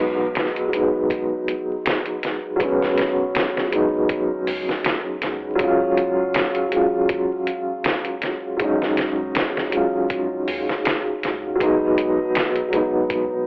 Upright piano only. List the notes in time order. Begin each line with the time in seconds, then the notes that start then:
Already playing: F#3 G#3 B3 D#4
0.68 F#3 G#3
0.73 B3 D#4
2.56 F#3 G#3
2.61 B3 C#4
3.68 F#3 G#3
3.73 B3 D#4
5.55 F#3 G#3
5.61 C#4 F4
6.69 F#3 G#3
6.74 C#4 F4
8.57 F#3 G#3
8.62 C#4 D#4
9.69 F#3 G#3
9.74 C#4 F4
11.55 F#3 G#3
11.61 B3 D#4
12.68 F#3 G#3
12.74 B3 D#4